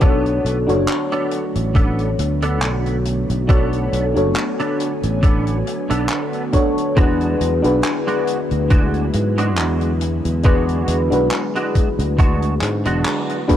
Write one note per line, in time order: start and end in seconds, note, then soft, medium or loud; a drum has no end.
0.00 0.39 B1 medium
0.00 13.57 D3 medium
0.00 13.57 F#3 medium
0.00 6.93 A3 medium
0.00 13.57 B3 medium
0.00 0.57 B3 loud
0.00 0.62 D4 medium
0.00 0.57 D4 medium
0.00 0.62 F#4 medium
0.00 3.46 F#4 medium
0.00 0.63 A4 medium
0.00 0.57 A4 loud
0.00 0.63 C#5 medium
0.00 kick loud
0.00 closed hi-hat medium
0.26 closed hi-hat soft
0.44 0.65 B1 medium
0.44 closed hi-hat medium
0.67 0.85 F#1 medium
0.67 3.43 D4 medium
0.67 3.44 F#4 medium
0.67 3.44 A4 medium
0.67 3.45 C#5 loud
0.67 closed hi-hat medium
0.87 clap loud
0.87 closed hi-hat medium
1.12 1.44 B3 medium
1.12 1.44 D4 medium
1.12 1.44 A4 medium
1.12 closed hi-hat soft
1.31 closed hi-hat medium
1.55 2.14 A1 medium
1.55 closed hi-hat medium
1.75 2.09 B3 medium
1.75 2.09 D4 medium
1.75 2.09 A4 medium
1.75 kick loud
1.75 closed hi-hat medium
1.99 closed hi-hat soft
2.19 2.62 D2 medium
2.19 closed hi-hat medium
2.42 2.96 B3 medium
2.42 2.96 D4 medium
2.42 2.96 A4 medium
2.42 closed hi-hat medium
2.62 3.24 B1 medium
2.62 clap loud
2.62 closed hi-hat medium
2.86 closed hi-hat soft
3.05 closed hi-hat medium
3.30 3.88 B1 medium
3.30 closed hi-hat medium
3.48 4.04 B3 loud
3.48 4.10 D4 medium
3.48 4.04 D4 loud
3.48 4.10 F#4 medium
3.48 4.11 A4 medium
3.48 4.04 A4 loud
3.48 4.11 C#5 medium
3.48 6.94 G#5 medium
3.48 kick loud
3.48 closed hi-hat medium
3.73 closed hi-hat soft
3.93 4.13 B1 medium
3.93 closed hi-hat medium
4.14 4.33 F#1 medium
4.14 6.48 D4 medium
4.14 6.48 F#4 medium
4.14 6.49 A4 medium
4.14 6.49 C#5 medium
4.14 closed hi-hat medium
4.36 clap loud
4.36 closed hi-hat medium
4.60 4.91 B3 medium
4.60 4.91 D4 medium
4.60 4.91 A4 medium
4.60 closed hi-hat soft
4.80 closed hi-hat medium
5.03 5.62 A1 medium
5.03 closed hi-hat medium
5.23 5.57 B3 medium
5.23 5.57 D4 medium
5.23 5.57 A4 medium
5.23 kick loud
5.23 closed hi-hat medium
5.47 closed hi-hat soft
5.67 closed hi-hat medium
5.90 6.07 B1 medium
5.90 6.44 B3 medium
5.90 6.43 D4 medium
5.90 6.44 A4 medium
5.90 closed hi-hat medium
6.09 clap loud
6.09 closed hi-hat medium
6.33 closed hi-hat soft
6.53 6.92 D4 medium
6.53 6.92 F#4 medium
6.53 6.92 A4 medium
6.53 6.93 C#5 loud
6.53 kick medium
6.53 closed hi-hat medium
6.78 closed hi-hat medium
6.96 7.34 E2 medium
6.96 7.52 G#3 loud
6.96 13.57 G#3 medium
6.96 7.58 D4 medium
6.96 7.52 D4 medium
6.96 13.57 E4 medium
6.96 7.58 F#4 medium
6.96 7.52 F#4 loud
6.96 7.59 G#4 medium
6.96 7.59 B4 medium
6.96 kick loud
6.96 closed hi-hat medium
7.21 closed hi-hat soft
7.41 7.61 E2 medium
7.41 closed hi-hat medium
7.62 7.81 B1 medium
7.62 10.39 D4 medium
7.62 10.40 F#4 medium
7.62 10.40 G#4 medium
7.62 10.41 B4 loud
7.62 closed hi-hat medium
7.84 clap loud
7.84 closed hi-hat medium
8.07 8.39 G#3 medium
8.07 8.39 D4 medium
8.07 8.39 F#4 medium
8.07 closed hi-hat soft
8.27 closed hi-hat medium
8.51 9.10 D2 medium
8.51 closed hi-hat medium
8.70 9.04 G#3 medium
8.70 9.04 D4 medium
8.70 9.04 F#4 medium
8.70 kick loud
8.70 closed hi-hat medium
8.94 closed hi-hat soft
9.14 9.58 G#2 medium
9.14 closed hi-hat loud
9.38 9.91 G#3 medium
9.38 9.91 D4 medium
9.38 9.91 F#4 medium
9.38 closed hi-hat medium
9.57 10.19 E2 medium
9.57 clap medium
9.57 closed hi-hat medium
9.81 closed hi-hat soft
10.01 closed hi-hat medium
10.25 10.83 E2 medium
10.25 closed hi-hat medium
10.43 11.00 G#3 loud
10.43 11.06 D4 medium
10.43 11.00 D4 loud
10.43 11.06 F#4 medium
10.43 11.00 F#4 loud
10.43 11.06 G#4 medium
10.43 11.06 B4 medium
10.43 kick loud
10.43 closed hi-hat medium
10.69 closed hi-hat soft
10.88 11.08 E2 medium
10.88 closed hi-hat loud
11.10 11.28 B1 medium
11.10 13.43 D4 medium
11.10 13.44 F#4 medium
11.10 13.44 G#4 medium
11.10 13.45 B4 medium
11.10 closed hi-hat medium
11.31 clap loud
11.31 closed hi-hat medium
11.55 11.87 G#3 medium
11.55 11.87 D4 medium
11.55 11.87 F#4 medium
11.55 closed hi-hat soft
11.75 kick medium
11.75 closed hi-hat medium
11.99 12.57 D2 medium
11.99 closed hi-hat medium
12.18 12.52 G#3 medium
12.18 12.52 D4 medium
12.18 12.52 F#4 loud
12.18 kick loud
12.18 closed hi-hat medium
12.42 closed hi-hat soft
12.61 12.87 G#2 medium
12.61 clap medium
12.61 closed hi-hat loud
12.85 13.02 E1 medium
12.85 13.39 G#3 medium
12.85 13.39 D4 medium
12.85 13.39 F#4 loud
12.85 closed hi-hat medium
13.05 clap loud
13.05 closed hi-hat medium
13.29 closed hi-hat soft
13.48 13.57 D4 loud
13.48 13.57 F#4 medium
13.48 13.57 G#4 medium
13.48 13.57 B4 loud
13.48 kick medium
13.48 closed hi-hat medium
13.48 high tom medium